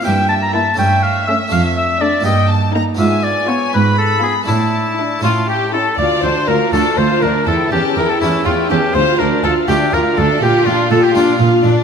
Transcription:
<<
  \new Staff \with { instrumentName = "Violin section" } { \time 6/8 \key d \minor \tempo 4. = 81 e''4. e''4.~ | e''4. g''8 a''8 bes''8 | gis''4. b''4. | a''2~ a''16 r8. |
f''8 d''8 f''8 d''8 f''8 d''8 | g''8 a''8 g''8 a''8 g''8 a''8 | f''8 d''8 f''8 d''8 f''8 d''8 | f''8 d''8 f''8 d''8 f''8 d''8 | }
  \new Staff \with { instrumentName = "Oboe" } { \time 6/8 \key d \minor g''8 a''16 bes''16 a''8 g''8 f''8 e''8 | f''8 e''8 d''8 ees''8 r4 | e''8 d''8 cis''8 b'8 a'8 gis'8 | e'4. f'8 g'8 a'8 |
d''8 c''8 bes'8 a'8 c''8 bes'8 | a'8 g'8 bes'16 a'16 e'8 f'8 g'8 | c''8 bes'8 a'8 g'8 bes'8 a'8 | g'8 f'8 a'16 g'16 f'8 r4 | }
  \new Staff \with { instrumentName = "Violin section" } { \time 6/8 \key d \minor r4 e'8 r4 cis'8 | r4 d'8 r4 ees'8 | r4 eis'8 r4 eis'8 | r4 e'8 f'8 g'8 <e' a'>8 |
d''8 c''8 bes'8 a'8 c''8 bes'8 | a'8 g'8 bes'16 a'16 e'8 f'8 g'8 | c''8 bes'8 a'8 g'8 bes'8 a'8 | g'8 f'8 a'16 g'16 f'8 r4 | }
  \new Staff \with { instrumentName = "Viola section" } { \time 6/8 \key d \minor r4 bes8 r4 a8 | r4 a8 r4 bes8 | r4 b8 r4 b8 | r4 d'8 r4 cis'8 |
f'8 d'8 f'8 d'8 f'8 d'8 | e'8 cis'8 e'8 cis'8 e'8 cis'8 | f'8 d'8 f'8 d'8 f'8 d'8 | f'8 d'8 f'8 d'8 f'8 d'8 | }
  \new Staff \with { instrumentName = "Harpsichord" } { \time 6/8 \key d \minor <bes e' g'>4. <a cis' a'>4. | <a d' a'>4. <bes ees' g'>4. | <b d' eis'>2. | <a d' e'>4. <a cis' e'>4. |
r4. <a d' f'>4. | r4. <a cis' g'>4. | r4. <a d' f'>4. | r4. <bes d' f'>4. | }
  \new Staff \with { instrumentName = "Harpsichord" } { \clef bass \time 6/8 \key d \minor g,4. g,4. | f,4. g,4. | gis,4. gis,4. | a,4. a,4. |
d,8 d,8 d,8 d,8 d,8 d,8 | e,8 e,8 e,8 e,8 e,8 e,8 | d,8 d,8 d,8 d,8 d,8 d,8 | bes,8 bes,8 bes,8 bes,8 bes,8 bes,8 | }
  \new Staff \with { instrumentName = "Cello section" } { \clef bass \time 6/8 \key d \minor g,4. g,4. | f,4. g,4. | gis,4. gis,4. | a,4. a,4. |
d,8 d,8 d,8 d,8 d,8 d,8 | e,8 e,8 e,8 e,8 e,8 e,8 | d,8 d,8 d,8 d,8 d,8 d,8 | bes,8 bes,8 bes,8 bes,8 bes,8 bes,8 | }
>>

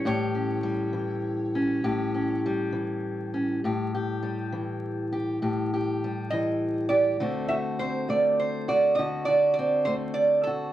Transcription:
<<
  \new Staff \with { instrumentName = "Resonator guitar played with a steel bar" } { \time 12/8 \key a \mixolydian \tempo 4. = 67 cis''1 r2 | r1 r8 dis''4 d''8~ | d''8 e''8 c''8 d''8 c''8 d''8 dis''8 d''8 d''8 c''8 d''8 a'8 | }
  \new Staff \with { instrumentName = "Steel-string acoustic guitar" } { \time 12/8 \key a \mixolydian << { <g g'>8 cis'8 g4. cis'8 g'8 cis'8 g4. cis'8 | g'8 g'8 g4. g'8 g'8 g'8 g4. g'8 | <a c' fis'>8 fis'8 c'4. fis'8 fis'8 fis'8 c'4. fis'8 | } \\ { a,4. e4. a,4. e4. | a,4. e4. a,4. e4. | d4. a4. d4. a4. | } >> }
>>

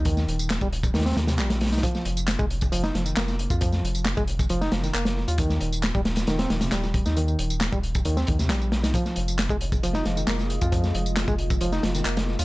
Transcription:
<<
  \new Staff \with { instrumentName = "Analog synth pad" } { \time 4/4 \key f \minor \tempo 4 = 135 r1 | r1 | r1 | r1 |
r1 | <aes f' ees''>1~ | <aes f' ees''>1 | }
  \new Staff \with { instrumentName = "Reed electric piano" } { \clef bass \time 4/4 \key f \minor ees4 r16 g16 r8 ees16 c'16 ees16 c16 g8. ees'16 | f4 r16 aes16 r8 f16 ees'16 f16 ees16 bes8. f'16 | f4 r16 aes16 r8 f16 ees'16 f16 ees16 bes8. f'16 | ees4 r16 g16 r8 ees16 c'16 ees16 c16 g8. ees'16 |
ees4 r16 g16 r8 ees16 c'16 ees16 c16 g8. ees'16 | f4 r16 aes16 r8 f16 ees'16 f16 ees16 bes8. f'16 | f4 r16 aes16 r8 f16 ees'16 f16 ees16 bes8. f'16 | }
  \new Staff \with { instrumentName = "Sub bass" } { \clef bass \time 4/4 \key f \minor ees,8 ees,,8. ees,,8. ees,8 ees,8 bes,,8. c,16 | r8 f,,8. f,,8. f,,8 f,,8 f,,8. f,16~ | f,8 f,,8. f,,8. f,,8 f,,8 f,,8. ees,16~ | ees,8 ees,,8. ees,,8. ees,,8 ees,,8 ees,,8. ees,16~ |
ees,8 ees,,8. ees,,8. ees,8 ees,8 bes,,8. c,16 | r8 f,,8. f,,8. f,,8 f,,8 f,,8. f,16~ | f,8 f,,8. f,,8. f,,8 f,,8 f,,8. ees,16 | }
  \new DrumStaff \with { instrumentName = "Drums" } \drummode { \time 4/4 <hh bd tamb>16 <sn tamb>16 hh16 tamb16 <hc hh sn tamb>16 <bd tamb>16 hh16 <bd tamb>16 <hh sn tamb>32 <hh sn>32 <hh sn tamb>32 <hh sn>32 <hh sn>16 <hh sn tamb>16 <hc hh sn tamb>16 <hh sn tamb>16 <hh sn>32 <hh sn>32 <hh sn tamb>32 <hh sn>32 | <hh bd tamb>16 <sn tamb>16 hh16 tamb16 <hc hh sn tamb>16 <bd tamb>16 hh16 <bd tamb>16 <hh tamb>16 <sn tamb>16 <hh sn>16 tamb16 <hc hh sn tamb>16 <sn tamb>16 hh16 <bd tamb>16 | <hh bd tamb>16 <sn tamb>16 hh16 tamb16 <hc hh sn tamb>16 <bd tamb>16 hh16 <bd tamb>16 <hh tamb>16 <sn tamb>16 <hh sn>16 <sn tamb>16 <hc hh tamb>16 <hh sn tamb>16 sn16 <hh tamb>16 | <hh bd tamb>16 <sn tamb>16 hh16 tamb16 <hc hh sn tamb>16 <bd tamb>16 <hh sn>16 <hh sn tamb>16 <hh sn tamb>16 <hh sn tamb>16 <hh sn>16 <hh sn tamb>16 <hc hh sn tamb>16 <sn tamb>16 <hh bd>16 <sn tamb>16 |
<hh tamb>16 tamb16 hh16 tamb16 <hc hh sn tamb>16 <bd tamb>16 hh16 <bd tamb>16 <hh tamb>16 <sn tamb>16 <hh bd>16 <sn tamb>16 <hc hh sn tamb>16 tamb16 <hh sn>16 <hh sn tamb>16 | <hh bd tamb>16 <sn tamb>16 hh16 tamb16 <hc hh sn tamb>16 <bd tamb>16 hh16 <bd tamb>16 <hh tamb>16 <sn tamb>16 <hh sn>16 tamb16 <hc hh sn tamb>16 <sn tamb>16 hh16 <bd tamb>16 | <hh bd tamb>16 <sn tamb>16 hh16 tamb16 <hc hh sn tamb>16 <bd tamb>16 hh16 <bd tamb>16 <hh tamb>16 <sn tamb>16 <hh sn>16 <sn tamb>16 <hc hh tamb>16 <hh sn tamb>16 sn16 <hh tamb>16 | }
>>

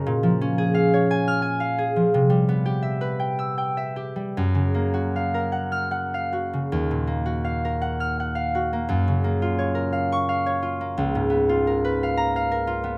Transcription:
\new Staff \with { instrumentName = "Harp" } { \time 6/8 \key ees \dorian \tempo 4. = 56 << { r4. r16 f'''4~ f'''16 | r4. r16 e'''4~ e'''16 | r4. r16 f'''4~ f'''16~ | f'''4.~ f'''16 f'''4~ f'''16~ |
f'''4.~ f'''16 des'''4~ des'''16~ | des'''4.~ des'''16 bes''4~ bes''16 | } \\ { <bes, des' bes' des'' bes''>16 f16 des'16 aes'16 f''16 des''16 aes''8 aes''16 f''16 aes'16 f16 | c16 g16 b16 g'16 e''16 b'16 g''8 g''16 e''16 g'16 g16 | ges,16 des16 bes16 ges'16 f''16 bes'16 ges''8 ges''16 f''16 ges'16 des16 | ees,16 bes,16 bes16 ges'16 f''16 bes'16 ges''8 ges''16 f''16 ges'16 bes16 |
ges,16 des16 bes16 f'16 des''16 bes'16 f''8 f''16 des''16 f'16 bes16 | des,16 aes,16 ces'16 f'16 bes'16 ces''16 f''8 f''16 bes'16 f'16 ces'16 | } >> }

